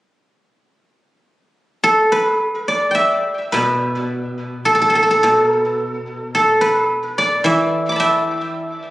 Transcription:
1.84 4.03 A4 medium
2.12 3.52 B4 medium
2.68 4.53 D5 soft
2.91 4.67 E5 medium
2.91 4.46 G5 soft
3.52 5.23 B2 soft
3.52 5.23 B4 soft
4.65 4.74 A4 soft
4.75 4.81 A4 soft
4.82 4.89 A4 soft
4.90 4.95 A4 soft
4.95 5.02 A4 soft
5.03 5.10 A4 soft
5.11 5.23 A4 soft
5.23 7.47 B2 soft
5.23 5.43 A4 medium
5.43 5.55 A#4 medium
5.55 6.61 B4 medium
6.35 8.54 A4 medium
6.61 8.66 B4 medium
7.18 8.90 D5 medium
7.44 8.90 E3 soft
7.44 7.99 E5 medium
7.89 8.90 B5 soft
7.89 8.90 D6 soft
7.96 8.90 E5 medium
7.96 8.90 A5 soft
8.00 8.90 G5 soft

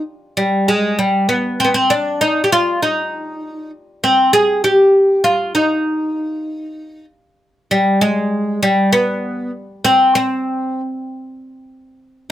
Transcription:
0.37 0.69 G3 medium
0.68 0.97 G#3 medium
0.99 1.28 G3 medium
1.29 1.60 B3 medium
1.60 1.67 C4 medium
1.65 1.73 B3 medium
1.74 1.91 C4 medium
1.90 2.22 D4 medium
2.21 2.44 D#4 loud
2.44 2.51 G4 medium
2.52 2.82 F4 loud
2.83 3.70 D#4 medium
4.04 4.33 C4 medium
4.33 4.64 G#4 loud
4.64 5.24 G4 medium
5.24 5.54 F4 medium
5.55 7.05 D#4 medium
7.71 8.01 G3 medium
8.01 8.62 G#3 loud
8.63 8.91 G3 medium
8.93 9.50 B3 loud
9.85 10.14 C4 loud
10.15 10.80 C4 loud

